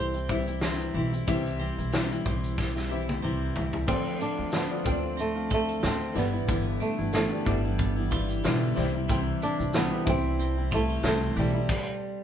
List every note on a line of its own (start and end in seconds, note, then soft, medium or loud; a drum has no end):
0.00 0.91 C2 medium
0.00 0.14 E3 medium
0.00 0.15 G3 medium
0.00 1.26 G3 medium
0.00 0.14 C4 medium
0.00 0.13 E4 medium
0.00 0.29 E4 medium
0.00 1.27 G4 medium
0.00 3.20 C5 medium
0.14 0.28 G3 soft
0.14 0.29 C4 soft
0.14 0.29 E4 soft
0.14 shaker soft
0.28 0.47 E3 medium
0.28 0.47 G3 medium
0.28 0.92 C4 medium
0.28 0.47 C4 medium
0.28 0.92 E4 medium
0.28 0.46 E4 medium
0.28 0.93 G4 medium
0.28 0.93 E5 medium
0.28 kick medium
0.47 0.61 G3 soft
0.47 0.62 C4 soft
0.47 0.62 E4 soft
0.47 shaker soft
0.61 0.94 C3 medium
0.61 0.93 E3 medium
0.61 0.94 G3 medium
0.61 0.95 C4 medium
0.61 0.95 E4 medium
0.61 snare loud
0.61 shaker medium
0.80 shaker medium
0.94 1.21 B1 medium
0.94 1.12 E3 medium
0.94 1.13 G3 medium
0.94 1.13 C4 medium
0.94 1.11 E4 medium
1.13 1.27 G3 soft
1.13 1.27 C4 soft
1.13 1.27 E4 medium
1.13 shaker soft
1.27 1.69 C2 medium
1.27 1.60 C3 medium
1.27 1.58 E3 medium
1.27 1.59 G3 medium
1.27 2.13 C4 medium
1.27 1.60 C4 medium
1.27 2.13 E4 medium
1.27 1.60 E4 medium
1.27 2.57 G4 medium
1.27 2.13 G4 medium
1.27 2.13 E5 loud
1.27 kick loud
1.27 shaker medium
1.46 shaker medium
1.59 1.77 E3 medium
1.59 1.78 G3 medium
1.59 1.78 C4 medium
1.59 1.77 E4 medium
1.78 2.17 B1 medium
1.78 1.92 G3 soft
1.78 1.92 C4 soft
1.78 1.93 E4 medium
1.78 shaker soft
1.92 2.10 C3 medium
1.92 2.11 E3 medium
1.92 2.11 G3 medium
1.92 2.11 C4 medium
1.92 2.10 E4 medium
1.92 snare loud
1.92 shaker medium
2.11 2.25 G3 soft
2.11 2.26 C4 medium
2.11 2.25 E4 medium
2.11 shaker medium
2.25 3.20 B1 medium
2.25 2.76 E3 medium
2.25 2.76 G3 medium
2.25 2.75 C4 medium
2.25 2.74 E4 medium
2.25 kick medium
2.25 shaker soft
2.44 shaker soft
2.58 3.96 G4 medium
2.58 kick medium
2.58 snare soft
2.76 2.90 G3 soft
2.76 2.90 C4 medium
2.76 2.90 E4 medium
2.76 snare soft
2.90 3.08 E3 medium
2.90 3.09 G3 medium
2.90 3.53 C4 medium
2.90 3.08 C4 medium
2.90 3.54 E4 medium
2.90 3.06 E4 medium
2.90 3.54 G4 medium
2.90 3.54 E5 medium
3.08 3.22 G3 soft
3.08 3.23 C4 soft
3.08 3.23 E4 medium
3.08 high tom medium
3.22 3.50 C2 medium
3.22 3.55 C3 medium
3.22 3.54 E3 medium
3.22 3.55 G3 medium
3.22 3.56 C4 medium
3.22 3.56 E4 medium
3.55 3.83 C2 medium
3.55 3.73 E3 medium
3.55 3.74 G3 medium
3.55 3.73 C4 medium
3.55 3.71 E4 medium
3.55 floor tom medium
3.72 3.88 G3 soft
3.72 3.87 C4 soft
3.72 3.88 E4 soft
3.72 floor tom medium
3.87 4.15 D2 medium
3.87 4.39 D3 medium
3.87 6.15 F3 medium
3.87 4.39 A3 medium
3.87 4.41 C4 medium
3.87 4.21 C4 loud
3.87 4.38 C4 medium
3.87 4.41 F4 medium
3.87 4.37 F4 medium
3.87 4.42 A4 medium
3.87 4.42 D5 medium
3.87 kick loud
3.87 crash medium
4.20 4.84 D4 medium
4.20 4.54 D4 medium
4.20 shaker soft
4.38 4.66 D2 medium
4.38 4.52 A3 soft
4.38 4.54 C4 soft
4.38 4.53 F4 soft
4.52 5.04 D3 medium
4.52 5.04 A3 medium
4.52 4.84 B3 medium
4.52 5.01 F4 medium
4.52 snare loud
4.52 shaker medium
4.69 4.80 C4 medium
4.69 4.80 F4 medium
4.69 4.81 A4 medium
4.69 4.81 D5 medium
4.83 5.80 D2 medium
4.83 5.70 C4 medium
4.83 5.17 C4 medium
4.83 6.52 D4 medium
4.83 5.70 F4 medium
4.83 5.71 A4 medium
4.83 4.93 C5 medium
4.83 kick medium
4.83 shaker medium
4.92 5.74 D5 medium
5.02 5.36 A3 soft
5.02 5.36 C4 soft
5.02 5.34 F4 soft
5.17 5.53 A3 medium
5.17 5.82 C4 medium
5.17 shaker medium
5.35 5.49 A3 soft
5.35 5.50 C4 soft
5.35 5.51 F4 medium
5.49 5.80 D3 medium
5.49 5.81 A3 medium
5.49 5.82 C4 medium
5.49 5.82 F4 medium
5.49 6.23 A4 medium
5.49 kick medium
5.49 shaker soft
5.54 5.83 A3 loud
5.68 shaker soft
5.82 6.11 D2 medium
5.82 6.14 D3 medium
5.82 6.14 A3 medium
5.82 6.15 C4 medium
5.82 6.16 F4 medium
5.82 snare loud
5.82 shaker medium
5.86 6.18 C4 medium
6.14 6.43 G1 medium
6.14 6.33 E3 medium
6.14 6.33 G3 medium
6.14 7.07 B3 medium
6.14 6.33 B3 medium
6.14 7.07 E4 medium
6.14 6.32 E4 medium
6.14 7.08 G4 medium
6.14 7.08 D5 medium
6.14 snare soft
6.14 shaker soft
6.18 6.82 B3 medium
6.33 6.47 E3 soft
6.33 6.47 G3 soft
6.33 6.47 B3 soft
6.33 6.48 E4 medium
6.47 6.75 G1 medium
6.47 6.99 G2 medium
6.47 6.99 D3 medium
6.47 6.99 E3 medium
6.47 6.99 G3 medium
6.47 6.98 B3 medium
6.47 6.97 E4 medium
6.47 kick loud
6.47 shaker medium
6.80 7.12 A3 medium
6.80 7.44 D4 medium
6.80 shaker soft
6.98 7.26 G1 medium
6.98 7.13 E3 soft
6.98 7.13 G3 soft
6.98 7.13 B3 soft
6.98 7.13 E4 medium
7.13 7.64 G2 medium
7.13 7.64 D3 medium
7.13 7.64 E3 medium
7.13 7.64 G3 medium
7.13 7.48 A3 medium
7.13 7.63 B3 medium
7.13 7.63 E4 medium
7.13 snare loud
7.13 shaker medium
7.30 7.41 B3 medium
7.30 7.41 E4 medium
7.30 7.41 G4 medium
7.30 7.42 D5 medium
7.45 8.40 G1 medium
7.45 8.73 G3 medium
7.45 8.31 B3 medium
7.45 8.83 D4 medium
7.45 8.31 E4 medium
7.45 8.32 G4 medium
7.45 8.32 D5 medium
7.45 kick medium
7.45 shaker medium
7.64 7.98 E3 soft
7.64 7.97 G3 soft
7.64 7.96 B3 soft
7.64 7.95 E4 soft
7.78 8.42 B3 medium
7.78 kick medium
7.78 shaker medium
7.96 8.10 E3 soft
7.96 8.11 G3 soft
7.96 8.11 B3 medium
7.96 8.11 E4 medium
8.11 8.44 E3 medium
8.11 8.44 G3 medium
8.11 8.44 B3 medium
8.11 8.45 E4 medium
8.11 8.29 F4 medium
8.11 kick medium
8.11 shaker soft
8.29 8.84 G4 soft
8.29 shaker soft
8.44 8.71 B1 loud
8.44 8.77 G2 medium
8.44 8.77 D3 medium
8.44 8.76 E3 medium
8.44 8.77 G3 medium
8.44 8.77 B3 medium
8.44 8.78 E4 loud
8.44 snare loud
8.44 shaker medium
8.75 9.30 C2 loud
8.75 8.95 E3 medium
8.75 8.95 G3 medium
8.75 9.68 C4 medium
8.75 8.95 C4 medium
8.75 9.68 E4 medium
8.75 9.68 G4 medium
8.75 8.84 D5 medium
8.75 snare soft
8.75 shaker soft
8.80 8.94 E4 medium
8.84 9.72 E5 medium
8.95 9.09 G3 soft
8.95 9.09 C4 medium
8.95 9.10 E4 medium
9.09 9.59 C3 medium
9.09 9.60 E3 medium
9.09 9.60 G3 medium
9.09 9.60 C4 medium
9.09 9.19 C4 medium
9.09 9.58 E4 medium
9.09 kick loud
9.09 shaker medium
9.42 9.76 D4 medium
9.42 10.05 E4 medium
9.42 shaker soft
9.59 9.86 C2 medium
9.59 9.74 G3 soft
9.59 9.75 C4 soft
9.59 9.74 E4 medium
9.59 shaker soft
9.73 10.57 C3 medium
9.73 10.57 E3 medium
9.73 10.58 G3 medium
9.73 10.06 B3 loud
9.73 10.56 E4 medium
9.73 snare loud
9.73 shaker medium
9.90 10.01 C4 medium
9.90 10.01 E4 medium
9.90 10.01 G4 medium
9.90 10.02 A4 medium
10.05 11.00 C2 medium
10.05 10.91 C4 medium
10.05 10.91 E4 medium
10.05 11.36 E4 medium
10.05 10.92 G4 medium
10.05 10.92 E5 medium
10.05 kick medium
10.05 shaker soft
10.09 10.69 C4 medium
10.39 11.04 C4 medium
10.39 shaker medium
10.57 10.70 G3 soft
10.57 10.71 C4 soft
10.57 10.72 E4 medium
10.71 11.03 E3 medium
10.71 11.03 G3 medium
10.71 11.07 A3 loud
10.71 11.03 C4 medium
10.71 11.04 E4 medium
10.71 10.90 F4 medium
10.71 kick medium
10.71 shaker soft
10.90 11.76 G4 soft
11.03 11.30 C2 loud
11.03 11.36 C3 medium
11.03 11.35 E3 medium
11.03 11.36 G3 medium
11.03 11.37 C4 medium
11.03 11.37 E4 medium
11.03 snare loud
11.03 shaker medium
11.08 11.36 A3 medium
11.36 11.63 B1 loud
11.36 11.55 E3 medium
11.36 11.55 G3 medium
11.36 12.23 G3 medium
11.36 11.54 C4 medium
11.36 11.53 E4 medium
11.36 shaker soft
11.54 11.70 G3 soft
11.54 11.70 C4 soft
11.54 11.69 E4 soft
11.69 kick loud
11.69 crash medium